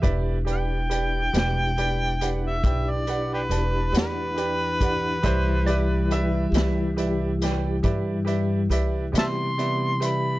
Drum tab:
HH |xxxxxxxxxxxx|xxxxxxxxxxxx|
SD |---o-----o--|---o-o---o--|
BD |o-----o----o|o-----o-----|